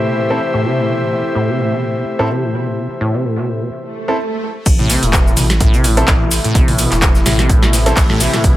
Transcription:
0.00 3.68 C3 medium
0.00 3.68 E3 medium
0.00 3.68 A3 medium
0.00 3.71 A3 medium
0.00 3.68 E4 medium
0.00 3.71 G4 medium
0.00 3.72 C5 medium
0.00 3.72 E5 medium
0.07 0.19 B2 medium
0.17 0.32 A2 medium
0.17 snare soft
0.30 0.39 B2 medium
0.30 0.38 C4 medium
0.30 0.38 E4 medium
0.30 0.38 A4 medium
0.30 snare soft
0.41 open hi-hat medium
0.54 0.66 A2 medium
0.64 0.79 C3 medium
0.64 snare soft
0.77 0.89 A2 medium
0.77 snare soft
0.88 1.03 B2 medium
1.01 1.13 A2 medium
1.12 1.22 B2 medium
1.12 snare soft
1.25 closed hi-hat soft
1.35 1.50 A2 medium
1.48 1.60 C3 medium
1.59 1.73 A2 medium
1.59 snare soft
1.72 1.84 B2 medium
1.72 snare soft
1.82 1.97 A2 medium
1.96 2.04 B2 medium
1.96 closed hi-hat soft
2.19 2.31 A2 medium
2.19 2.27 C4 medium
2.19 2.27 E4 medium
2.19 2.27 A4 medium
2.30 2.44 C3 medium
2.43 2.55 A2 medium
2.53 2.68 B2 medium
2.66 2.79 A2 medium
2.77 2.88 B2 medium
3.01 3.15 A2 medium
3.13 3.26 C3 medium
3.13 snare soft
3.24 3.39 A2 medium
3.24 shaker medium
3.37 3.49 B2 medium
3.37 snare soft
3.48 3.62 A2 medium
3.48 shaker medium
3.61 3.70 B2 medium
3.72 swell medium
4.08 4.16 C4 medium
4.08 4.16 E4 medium
4.08 4.16 A4 medium
4.66 4.97 A1 loud
4.66 8.57 C3 medium
4.66 8.57 E3 medium
4.66 8.57 A3 medium
4.66 8.57 E4 medium
4.66 kick loud
4.66 closed hi-hat medium
4.66 crash loud
4.66 cabasa medium
4.66 shaker medium
4.79 4.91 A2 medium
4.79 mid tom medium
4.90 5.04 C3 medium
4.90 snare medium
4.90 open hi-hat loud
4.90 cabasa medium
4.90 shaker medium
5.02 5.32 E1 loud
5.02 5.15 A2 medium
5.02 closed hi-hat medium
5.02 closed hi-hat soft
5.02 cabasa soft
5.13 5.28 B2 medium
5.13 kick loud
5.13 snare loud
5.13 clap loud
5.13 closed hi-hat medium
5.13 cabasa medium
5.13 shaker medium
5.26 5.38 A2 medium
5.26 cabasa soft
5.37 5.68 A1 medium
5.37 5.48 B2 medium
5.37 open hi-hat loud
5.37 mid tom medium
5.37 cabasa medium
5.37 shaker medium
5.50 snare medium
5.50 closed hi-hat medium
5.50 cabasa soft
5.60 5.75 A2 medium
5.60 kick loud
5.60 closed hi-hat medium
5.60 cabasa medium
5.60 shaker loud
5.73 6.03 A1 loud
5.73 5.86 C3 medium
5.73 closed hi-hat soft
5.73 cabasa soft
5.83 5.99 A2 medium
5.83 open hi-hat loud
5.83 cabasa medium
5.83 shaker medium
5.97 6.09 B2 medium
5.97 6.04 C4 medium
5.97 6.04 E4 medium
5.97 6.04 A4 loud
5.97 closed hi-hat medium
5.97 cabasa soft
6.08 6.39 A1 medium
6.08 6.22 A2 medium
6.08 kick loud
6.08 snare loud
6.08 clap loud
6.08 closed hi-hat medium
6.08 cabasa medium
6.21 6.30 B2 medium
6.31 open hi-hat loud
6.31 cabasa medium
6.44 6.56 A2 medium
6.44 closed hi-hat medium
6.44 cabasa soft
6.55 6.86 A1 loud
6.55 6.70 C3 medium
6.55 kick loud
6.55 closed hi-hat medium
6.55 cabasa medium
6.55 shaker medium
6.68 6.80 A2 medium
6.68 open hi-hat medium
6.68 mid tom medium
6.78 6.93 B2 medium
6.78 open hi-hat loud
6.78 cabasa medium
6.78 shaker medium
6.91 7.21 E1 loud
6.91 7.04 A2 medium
6.91 snare soft
6.91 clap soft
6.91 closed hi-hat medium
6.91 cabasa soft
7.02 7.13 B2 medium
7.02 kick loud
7.02 snare loud
7.02 clap loud
7.02 closed hi-hat medium
7.02 cabasa medium
7.15 snare soft
7.15 cabasa soft
7.26 7.57 A1 medium
7.26 7.40 A2 medium
7.26 snare medium
7.26 open hi-hat loud
7.26 mid tom medium
7.26 cabasa loud
7.39 7.51 C3 medium
7.39 snare medium
7.39 closed hi-hat medium
7.39 cabasa soft
7.49 7.64 A2 medium
7.49 kick loud
7.49 closed hi-hat medium
7.49 cabasa medium
7.49 shaker medium
7.63 7.92 A1 loud
7.63 7.75 B2 medium
7.63 snare medium
7.63 closed hi-hat soft
7.63 cabasa soft
7.73 7.88 A2 medium
7.73 snare soft
7.73 open hi-hat loud
7.73 cabasa medium
7.73 shaker medium
7.86 7.95 B2 medium
7.86 7.93 C4 medium
7.86 7.93 E4 medium
7.86 7.93 A4 loud
7.86 snare soft
7.86 closed hi-hat medium
7.86 cabasa soft
7.96 8.28 A1 medium
7.96 kick loud
7.96 snare loud
7.96 clap loud
7.96 closed hi-hat medium
7.96 open hi-hat medium
7.96 cabasa medium
8.10 8.22 A2 medium
8.10 snare medium
8.20 8.35 C3 medium
8.20 snare soft
8.20 open hi-hat loud
8.20 cabasa loud
8.33 8.46 A2 medium
8.33 snare medium
8.33 closed hi-hat medium
8.33 cabasa soft
8.44 8.57 A1 loud
8.44 8.57 B2 medium
8.44 kick loud
8.44 closed hi-hat medium
8.44 cabasa medium
8.44 shaker medium

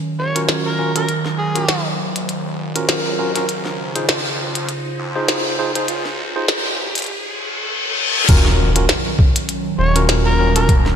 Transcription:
0.00 3.46 D#3 medium
0.00 3.45 F#3 medium
0.00 1.07 C#4 medium
0.00 riser medium
0.19 0.63 F#1 loud
0.19 0.38 C#5 medium
0.35 0.76 C#4 medium
0.35 0.76 F4 medium
0.35 0.76 F#4 medium
0.35 0.76 A#4 loud
0.35 closed hi-hat medium
0.49 snare loud
0.49 closed hi-hat medium
0.66 1.07 F#1 medium
0.66 0.93 A#4 medium
0.79 0.91 C#4 medium
0.79 0.91 F4 medium
0.79 0.91 F#4 medium
0.79 0.91 A#4 loud
0.95 1.05 C#4 medium
0.95 1.05 F4 medium
0.95 1.05 F#4 medium
0.95 1.05 A#4 medium
0.95 1.12 A#4 medium
0.95 closed hi-hat medium
1.09 1.67 D#1 medium
1.09 7.05 C5 medium
1.09 closed hi-hat medium
1.26 snare soft
1.38 1.86 G#4 medium
1.55 1.65 C#4 medium
1.55 1.65 F4 medium
1.55 1.65 F#4 medium
1.55 1.65 A#4 loud
1.55 closed hi-hat medium
1.69 2.13 D#1 loud
1.69 snare loud
1.69 closed hi-hat medium
2.16 2.57 D#1 loud
2.16 closed hi-hat medium
2.29 closed hi-hat medium
2.59 3.03 F#1 loud
2.75 3.16 C#4 medium
2.75 3.16 F4 medium
2.75 3.16 F#4 medium
2.75 3.16 A#4 loud
2.75 closed hi-hat medium
2.89 snare loud
2.89 closed hi-hat medium
3.06 3.17 C#2 medium
3.18 3.47 D#2 loud
3.18 3.31 C#4 medium
3.18 3.31 F4 medium
3.18 3.31 F#4 medium
3.18 3.31 A#4 loud
3.36 3.45 C#4 medium
3.36 3.45 F4 medium
3.36 3.45 F#4 medium
3.36 3.45 A#4 loud
3.36 snare soft
3.36 closed hi-hat medium
3.49 4.07 C#2 loud
3.49 7.05 C#3 medium
3.49 7.06 F4 medium
3.49 closed hi-hat medium
3.65 snare soft
3.96 4.05 D#4 medium
3.96 4.05 F4 medium
3.96 4.05 G#4 medium
3.96 4.05 C5 loud
3.96 closed hi-hat medium
4.09 4.67 F2 loud
4.09 snare loud
4.09 closed hi-hat medium
4.55 closed hi-hat medium
4.69 closed hi-hat medium
4.99 5.43 F2 loud
5.16 5.56 D#4 medium
5.16 5.56 F4 medium
5.16 5.56 G#4 medium
5.16 5.56 C5 loud
5.28 snare loud
5.28 closed hi-hat medium
5.46 5.87 F2 loud
5.59 5.71 D#4 medium
5.59 5.71 F4 medium
5.59 5.71 G#4 medium
5.59 5.71 C5 loud
5.75 5.85 D#4 medium
5.75 5.85 F4 medium
5.75 5.85 G#4 medium
5.75 5.85 C5 medium
5.75 closed hi-hat medium
5.88 6.47 C#2 loud
5.88 closed hi-hat medium
6.05 snare soft
6.36 6.45 D#4 medium
6.36 6.45 F4 medium
6.36 6.45 G#4 medium
6.36 6.45 C5 loud
6.48 6.93 C#2 loud
6.48 snare loud
6.48 closed hi-hat medium
6.95 7.09 G#1 loud
6.95 closed hi-hat medium
6.98 closed hi-hat soft
7.02 closed hi-hat soft
7.04 closed hi-hat soft
7.09 reverse cymbal medium
8.29 8.87 D#1 loud
8.29 10.96 D#3 medium
8.29 10.96 F#3 loud
8.29 10.96 C#4 medium
8.29 8.69 C#4 loud
8.29 8.69 F4 medium
8.29 8.69 F#4 medium
8.29 8.69 A#4 loud
8.29 kick loud
8.29 closed hi-hat medium
8.29 crash loud
8.29 impact medium
8.46 snare soft
8.76 8.85 C#4 medium
8.76 8.85 F4 medium
8.76 8.85 F#4 medium
8.76 8.85 A#4 loud
8.76 closed hi-hat medium
8.89 snare loud
8.89 closed hi-hat medium
9.19 kick loud
9.36 closed hi-hat medium
9.49 closed hi-hat medium
9.78 10.67 D#1 loud
9.78 9.98 C#5 medium
9.96 10.36 C#4 medium
9.96 10.36 F4 medium
9.96 10.36 F#4 medium
9.96 10.36 A#4 loud
9.96 closed hi-hat medium
10.09 snare loud
10.09 closed hi-hat medium
10.26 10.52 A#4 medium
10.39 10.51 C#4 medium
10.39 10.51 F4 medium
10.39 10.51 F#4 medium
10.39 10.51 A#4 loud
10.56 10.65 C#4 medium
10.56 10.65 F4 medium
10.56 10.65 F#4 medium
10.56 10.72 A#4 medium
10.56 10.65 A#4 loud
10.56 closed hi-hat medium
10.69 10.96 D#1 loud
10.69 kick loud
10.69 closed hi-hat medium
10.86 snare soft

